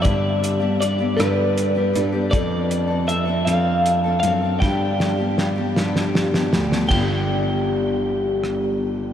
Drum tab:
RD |------------|------------|------------|x-----------|
HH |x-x-x-x-x-x-|x-x-x-x-x-x-|------------|------------|
SD |------r-----|------------|o-o-o-oooooo|--------r---|
BD |o-----------|o-----------|o-----------|o-----------|